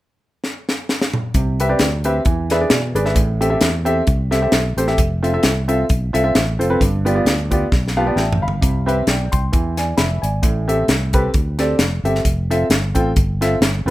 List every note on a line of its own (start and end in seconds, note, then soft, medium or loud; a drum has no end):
0.44 snare medium
0.69 snare medium
0.89 snare medium
1.02 snare medium
1.14 mid tom medium
1.34 1.73 C2 medium
1.34 2.01 C3 medium
1.34 kick medium
1.34 closed hi-hat medium
1.60 1.67 C4 medium
1.60 1.67 G4 medium
1.60 1.67 B4 medium
1.60 1.68 E5 medium
1.60 closed hi-hat medium
1.69 1.85 C4 medium
1.69 1.85 G4 medium
1.69 1.85 B4 medium
1.69 1.85 D5 medium
1.79 2.19 D2 medium
1.79 snare loud
1.79 closed hi-hat medium
2.04 2.20 C4 medium
2.04 2.20 G4 medium
2.04 2.20 B4 medium
2.04 2.20 E5 medium
2.04 closed hi-hat medium
2.25 2.64 E2 medium
2.25 2.92 E3 medium
2.25 kick loud
2.25 closed hi-hat medium
2.50 2.58 D4 medium
2.50 2.58 G#4 medium
2.50 2.58 B4 medium
2.50 2.58 E5 medium
2.50 snare soft
2.50 closed hi-hat medium
2.61 2.76 D4 medium
2.61 2.76 G#4 medium
2.61 2.76 B4 medium
2.61 2.77 D5 medium
2.70 2.92 B2 medium
2.70 snare loud
2.70 closed hi-hat medium
2.95 3.13 G#1 medium
2.95 3.03 D4 medium
2.95 3.03 G#4 medium
2.95 3.03 B4 medium
2.95 3.03 D5 medium
2.95 closed hi-hat medium
3.05 3.16 D4 medium
3.05 3.16 G#4 medium
3.05 3.16 B4 medium
3.05 3.16 E5 medium
3.05 snare soft
3.15 3.55 A1 loud
3.15 3.82 A2 medium
3.15 kick medium
3.15 closed hi-hat medium
3.41 3.48 C4 medium
3.41 3.48 G4 medium
3.41 3.49 A4 medium
3.41 3.48 E5 medium
3.41 closed hi-hat medium
3.50 3.66 C4 medium
3.50 3.67 G4 medium
3.50 3.67 A4 medium
3.50 3.66 E5 medium
3.61 4.00 E2 medium
3.61 snare loud
3.61 closed hi-hat medium
3.85 4.01 C4 medium
3.85 4.01 G4 medium
3.85 4.01 A4 medium
3.85 4.01 E5 medium
3.85 closed hi-hat medium
4.07 4.46 C2 loud
4.07 kick medium
4.07 closed hi-hat medium
4.31 4.39 C4 medium
4.31 4.39 G4 medium
4.31 4.39 A4 medium
4.31 4.39 E5 medium
4.31 snare soft
4.31 closed hi-hat medium
4.42 4.58 C4 medium
4.42 4.58 G4 medium
4.42 4.58 A4 medium
4.42 4.58 E5 medium
4.52 4.74 B1 medium
4.52 snare medium
4.52 closed hi-hat medium
4.77 4.95 A1 medium
4.77 4.85 C4 medium
4.77 4.85 G4 medium
4.77 4.85 A4 medium
4.77 4.85 C5 medium
4.77 closed hi-hat medium
4.87 4.98 C4 medium
4.87 4.98 G4 medium
4.87 4.98 A4 medium
4.87 4.98 E5 medium
4.87 snare soft
4.98 5.37 F1 loud
4.98 kick medium
4.98 closed hi-hat medium
5.23 5.30 C4 medium
5.23 5.30 F4 medium
5.23 5.30 A4 medium
5.23 5.31 E5 medium
5.23 closed hi-hat medium
5.33 5.49 C4 medium
5.33 5.49 F4 medium
5.33 5.49 A4 medium
5.33 5.49 E5 medium
5.43 5.82 C2 loud
5.43 snare loud
5.43 closed hi-hat medium
5.68 5.83 C4 medium
5.68 5.83 F4 medium
5.68 5.83 A4 medium
5.68 5.83 E5 medium
5.68 closed hi-hat medium
5.89 6.11 B1 medium
5.89 kick loud
5.89 closed hi-hat medium
6.13 6.32 C2 medium
6.13 6.21 C4 medium
6.13 6.21 F4 medium
6.13 6.21 A4 medium
6.13 6.21 E5 loud
6.13 closed hi-hat medium
6.24 6.40 C4 medium
6.24 6.40 F4 medium
6.24 6.40 A4 medium
6.24 6.40 E5 medium
6.35 6.56 A1 loud
6.35 snare loud
6.35 closed hi-hat medium
6.59 6.77 F1 medium
6.59 6.67 C4 medium
6.59 6.67 F4 medium
6.59 6.67 A4 medium
6.59 6.67 C5 medium
6.59 closed hi-hat medium
6.70 6.80 C4 medium
6.70 6.80 F4 medium
6.70 6.80 A4 medium
6.70 6.80 B4 medium
6.80 7.19 G1 loud
6.80 7.47 G2 medium
6.80 kick medium
6.80 closed hi-hat medium
7.05 7.12 B3 medium
7.05 7.13 F4 medium
7.05 7.13 G4 medium
7.05 7.13 D5 medium
7.05 closed hi-hat medium
7.15 7.30 B3 medium
7.15 7.30 F4 medium
7.15 7.31 G4 medium
7.15 7.31 D5 medium
7.25 7.64 D2 medium
7.25 snare loud
7.25 closed hi-hat medium
7.51 7.65 B3 medium
7.51 7.65 F4 medium
7.51 7.66 G4 medium
7.51 7.65 D5 medium
7.51 kick medium
7.51 closed hi-hat medium
7.72 8.10 B1 medium
7.72 kick medium
7.72 snare soft
7.88 snare soft
7.97 8.04 B3 medium
7.97 8.04 F4 medium
7.97 8.04 G4 medium
7.97 8.04 F5 medium
7.97 8.14 A5 medium
8.06 8.21 B3 medium
8.06 8.22 F4 medium
8.06 8.22 G4 medium
8.06 8.22 D5 medium
8.16 8.37 A1 medium
8.16 8.40 E5 soft
8.16 8.40 G5 medium
8.16 8.40 A5 soft
8.16 snare medium
8.32 floor tom loud
8.41 8.59 G1 medium
8.41 8.85 F5 medium
8.41 8.85 B5 medium
8.48 floor tom medium
8.61 9.01 C2 loud
8.61 9.28 C3 medium
8.61 kick loud
8.61 closed hi-hat medium
8.86 9.01 C4 medium
8.86 9.01 G4 medium
8.86 9.01 B4 medium
8.86 9.02 E5 medium
8.86 closed hi-hat medium
9.07 9.28 B1 loud
9.07 9.31 D5 medium
9.07 9.31 G5 medium
9.07 snare medium
9.07 closed hi-hat medium
9.32 9.50 C2 medium
9.32 9.76 G5 medium
9.32 9.75 C6 medium
9.32 kick medium
9.32 closed hi-hat medium
9.52 9.92 E2 loud
9.52 10.19 E3 medium
9.52 kick medium
9.52 closed hi-hat medium
9.77 9.97 D5 medium
9.77 9.97 G#5 medium
9.77 snare soft
9.77 closed hi-hat medium
9.97 10.19 F1 medium
9.97 10.22 E5 medium
9.97 10.21 B5 medium
9.97 snare medium
9.97 closed hi-hat medium
10.22 10.40 G#1 medium
10.22 10.66 D5 soft
10.22 10.66 G#5 medium
10.22 closed hi-hat medium
10.43 10.82 A1 medium
10.43 11.10 A2 medium
10.43 kick medium
10.43 closed hi-hat medium
10.68 10.83 C4 medium
10.68 10.83 G4 medium
10.68 10.83 A4 medium
10.68 10.83 E5 medium
10.68 closed hi-hat medium
10.88 11.27 C2 medium
10.88 snare loud
10.88 closed hi-hat medium
11.13 11.28 C4 medium
11.13 11.28 G4 medium
11.13 11.28 A4 medium
11.13 11.29 B4 medium
11.13 kick medium
11.13 closed hi-hat medium
11.34 11.73 D2 medium
11.34 kick medium
11.34 closed hi-hat medium
11.59 11.74 C4 medium
11.59 11.74 G4 medium
11.59 11.74 A4 medium
11.59 11.74 D5 medium
11.59 snare soft
11.59 closed hi-hat medium
11.79 12.01 F1 medium
11.79 snare medium
11.79 closed hi-hat medium
12.04 12.22 G1 medium
12.04 12.19 C4 medium
12.04 12.19 G4 medium
12.04 12.20 A4 medium
12.04 12.19 E5 medium
12.04 closed hi-hat medium
12.15 snare soft
12.25 12.64 F1 loud
12.25 kick medium
12.25 closed hi-hat medium
12.50 12.65 C4 medium
12.50 12.65 F4 medium
12.50 12.65 A4 medium
12.50 12.65 E5 medium
12.50 closed hi-hat medium
12.70 12.91 G1 medium
12.70 snare loud
12.70 closed hi-hat medium
12.95 13.13 A1 medium
12.95 13.10 C4 medium
12.95 13.10 F4 medium
12.95 13.10 A4 medium
12.95 13.10 G5 medium
12.95 kick medium
12.95 closed hi-hat medium
13.16 13.55 G1 medium
13.16 kick loud
13.16 closed hi-hat medium
13.41 13.56 C4 medium
13.41 13.56 F4 medium
13.41 13.56 A4 medium
13.41 13.56 E5 medium
13.41 snare soft
13.41 closed hi-hat medium
13.61 13.82 G1 medium
13.61 snare loud
13.61 closed hi-hat medium
13.86 13.90 F1 medium
13.86 13.90 C4 medium
13.86 13.90 F4 medium
13.86 13.90 A4 medium